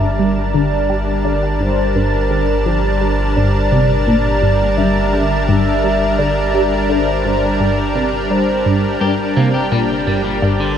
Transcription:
Already playing: sub bass G1, analog synth pad G3 D4 A#4 A5, soft synth lead E5, synth texture G5
0.19 synth arpeggio sound G3
0.54 synth arpeggio sound D3, soft synth lead D5
0.90 synth arpeggio sound G3
1.25 synth arpeggio sound D3
1.60 synth arpeggio sound G2, soft synth lead C5
1.96 synth arpeggio sound G2, soft synth lead A#4
2.31 synth arpeggio sound D3
2.66 synth arpeggio sound F3, soft synth lead C5
3.01 synth arpeggio sound G3
3.36 synth arpeggio sound G2, soft synth lead D5
3.72 synth arpeggio sound C3
4.07 synth arpeggio sound A#2, soft synth lead D5
4.42 synth arpeggio sound G2
4.77 synth arpeggio sound G2, soft synth lead E5
5.13 synth arpeggio sound D3
5.48 synth arpeggio sound G2, soft synth lead E5
5.84 synth arpeggio sound G3
6.18 synth arpeggio sound D3, soft synth lead D5
6.54 synth arpeggio sound G3
6.89 synth arpeggio sound D3, soft synth lead C5
7.25 synth arpeggio sound G2
7.59 synth arpeggio sound G2, soft synth lead D5
7.95 synth arpeggio sound C3
8.30 synth arpeggio sound G3, soft synth lead C5
8.66 synth arpeggio sound G2
9.01 sub bass G1, synth arpeggio sound G2, clean electric guitar G4
9.36 synth arpeggio sound C3, clean electric guitar A#3
9.54 clean electric guitar G4
9.71 synth arpeggio sound A#2, clean electric guitar G3
10.07 synth arpeggio sound G2, clean electric guitar G3
10.25 clean electric guitar G3
10.37 analog synth pad D5
10.42 synth arpeggio sound G2
10.60 clean electric guitar D3

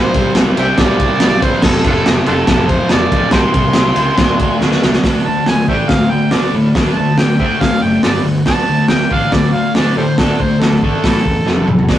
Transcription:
Already playing: distorted electric guitar C3 G3 C4, harmonica C5
0.14 fingered electric bass C2, distorted electric guitar G3 C4, kick, ride
0.35 fingered electric bass C2, distorted electric guitar C3 G3 C4, snare, ride
0.56 fingered electric bass C2, distorted electric guitar G3 C4, harmonica C5 E5 G5, ride
0.78 fingered electric bass C2, distorted electric guitar C3 G3 C4, harmonica D5, kick, snare, ride
1.00 kick, ride
1.20 fingered electric bass C2, distorted electric guitar C3 G3 C4, snare, ride
1.41 fingered electric bass A#1, distorted electric guitar G3 C4, harmonica C5, kick, ride
1.62 fingered electric bass F1, distorted electric guitar F2 C3 F3, harmonica A4, kick, snare, crash
1.84 fingered electric bass F1, distorted electric guitar C3 F3, harmonica D4 F4 A4, kick, ride
2.05 fingered electric bass F1, distorted electric guitar F2 C3 F3, snare, ride
2.26 fingered electric bass F1, distorted electric guitar C3 F3, harmonica D4 F4 A4, ride
2.47 fingered electric bass F1, distorted electric guitar F2 C3 F3, kick, snare, ride
2.69 harmonica C5, kick, ride
2.89 fingered electric bass F1, distorted electric guitar F2 C3 F3, harmonica D5, snare, ride
3.11 fingered electric bass A#1, distorted electric guitar C3 F3, kick, ride
3.31 fingered electric bass C2, distorted electric guitar C3 G3, harmonica G5 A5 C6, kick, snare, ride
3.36 distorted electric guitar C4
3.54 fingered electric bass C2, distorted electric guitar G3 C4, kick, ride
3.73 fingered electric bass C2, distorted electric guitar C3, snare, ride
3.78 distorted electric guitar G3 C4
3.96 fingered electric bass C#2, distorted electric guitar C4, ride
4.00 distorted electric guitar G3
4.17 fingered electric bass D2, distorted electric guitar D3 A3 D4, kick, snare, ride
4.39 kick, ride
4.61 fingered electric bass D2, distorted electric guitar D3 A3 D4, snare
4.72 snare
4.82 fingered electric bass C2, distorted electric guitar A3 D4, snare
4.93 snare
5.04 fingered electric bass D2, distorted electric guitar D3 A3 D4, kick, snare, open hi-hat
5.25 fingered electric bass D2, distorted electric guitar D3 A3, harmonica A5
5.46 fingered electric bass D2, distorted electric guitar D3 A3, harmonica G#5, snare, open hi-hat
5.68 fingered electric bass A1, distorted electric guitar D3 A3 D4, harmonica C5 E5 G5, kick
5.89 fingered electric bass D2, distorted electric guitar D3 A3, harmonica F5, kick, snare, open hi-hat
6.10 distorted electric guitar D3 A3, harmonica G5
6.31 fingered electric bass D2, distorted electric guitar D3 A3 D4, harmonica D5, snare, open hi-hat
6.53 fingered electric bass A2, distorted electric guitar D3 A3
6.75 fingered electric bass D2, distorted electric guitar D3 A3 D4, kick, snare, open hi-hat
6.95 fingered electric bass D2, distorted electric guitar D3 A3, harmonica A5
7.18 fingered electric bass D2, distorted electric guitar D3 A3, harmonica G5, snare, open hi-hat
7.39 fingered electric bass D2, distorted electric guitar D3 A3 D4, harmonica C5 E5 G5, kick
7.61 fingered electric bass D2, distorted electric guitar D3 A3, harmonica F5, kick, snare, open hi-hat
7.82 fingered electric bass F#1, distorted electric guitar D3 A3, harmonica G5
8.03 fingered electric bass G1, distorted electric guitar G2 D3 G3, harmonica F4 A4 D5, snare, open hi-hat
8.25 fingered electric bass D2, distorted electric guitar G2 D3
8.46 fingered electric bass D2, distorted electric guitar D3 A3 D4, harmonica A5, kick, snare, open hi-hat
8.69 fingered electric bass D2, distorted electric guitar D3 A3
8.88 fingered electric bass D2, distorted electric guitar D3 A3, harmonica G5, snare, open hi-hat
9.10 fingered electric bass A1, distorted electric guitar D3 A3 D4, harmonica F5, kick
9.32 fingered electric bass D2, distorted electric guitar D3 A3, harmonica D5, kick, snare, open hi-hat
9.54 distorted electric guitar D3 A3, harmonica F5
9.75 fingered electric bass D2, distorted electric guitar D3 A3 D4, harmonica D5, snare, open hi-hat
9.96 fingered electric bass A2, distorted electric guitar D3 A3, harmonica G4 A4 C5
10.18 fingered electric bass D2, distorted electric guitar D3 A3 D4, harmonica A4, kick, snare, open hi-hat
10.40 fingered electric bass D2, distorted electric guitar D3 A3, harmonica C5, kick
10.61 fingered electric bass D2, distorted electric guitar D3 A3, harmonica A4, snare, open hi-hat
10.82 fingered electric bass G#1, distorted electric guitar D3 A3 D4, harmonica A4, kick
11.03 fingered electric bass A1, distorted electric guitar A2 E3 A3, kick, snare, open hi-hat
11.25 fingered electric bass E1, distorted electric guitar A2 E3, kick
11.46 fingered electric bass F1, distorted electric guitar F2 C3 F3, snare
11.57 high tom
11.67 fingered electric bass E2, distorted electric guitar F2 C3, mid tom
11.79 floor tom
11.88 fingered electric bass D2, distorted electric guitar D3 A3 D4, kick, snare, open hi-hat

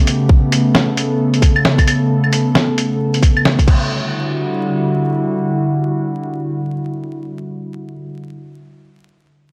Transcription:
Already playing: ambient pad C#3 A3 B3 G4
0.07 closed hi-hat
0.29 ambient pad A4, kick
0.52 closed hi-hat
0.75 snare
0.97 closed hi-hat
1.34 closed hi-hat
1.42 kick, closed hi-hat
1.56 claves
1.65 snare
1.78 kick, closed hi-hat, claves
1.88 closed hi-hat, claves
2.24 claves
2.33 closed hi-hat
2.55 snare
2.78 closed hi-hat
3.14 closed hi-hat
3.23 kick, closed hi-hat
3.37 claves
3.45 snare
3.59 kick, closed hi-hat
3.68 ambient pad D3 G3 E4 F#4, kick, crash

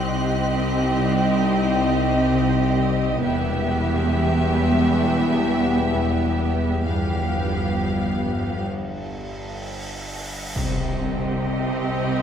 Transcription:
Already playing: double bass section C2, synth drone C2, cello section C2, french horn section G3 D#4, viola section C4, violin section G4 D#5 C6 F#6
0.10 marimba C3
0.54 marimba C4
0.99 marimba C3
1.43 marimba C4
1.88 marimba C3
2.32 marimba C3
2.78 marimba C3
3.22 double bass section E1, marimba E2, cello section E2, synth drone E2, french horn section G3 B3, viola section B3, violin section G4 E5
3.68 marimba E2
4.13 marimba E3
4.58 marimba E2
5.03 marimba E3
5.48 marimba E2
5.94 marimba E2
6.39 marimba E2
6.85 double bass section G1, synth drone G1, marimba G2, cello section G2, french horn section F3 B3, viola section B3, violin section G4 F5, cymbal swell
7.32 marimba G2
7.80 marimba G3
8.26 marimba G2
10.56 double bass section C2, synth drone C2, cello section C3, marimba C3, viola section C4, violin section G4 D#5, impact
11.00 marimba C4
11.45 marimba C4
11.90 marimba C3

